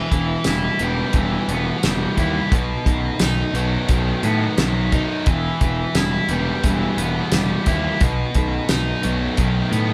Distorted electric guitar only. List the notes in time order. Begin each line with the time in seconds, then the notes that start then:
Already playing: E3
0.46 E4
0.81 G3
1.14 E3
1.49 B3
1.83 G3
2.18 E4
2.53 B2
3.21 D#4
3.56 F#3
3.90 D#3
4.24 B3
4.59 F#3
4.92 D#4
5.27 E3
5.96 E4
6.29 G3
6.64 E3
6.98 B3
7.33 G3
7.68 E4
8.01 B2
8.69 D#4
9.04 F#3
9.38 D#3
9.72 B3